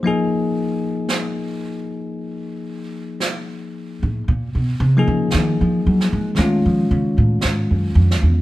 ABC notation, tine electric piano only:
X:1
M:4/4
L:1/8
Q:"Swing" 1/4=57
K:Bbm
V:1 name="Tine electric piano"
[F,B,EA]8 | z [F,B,EA]3 [E,^G,^CF]4 |]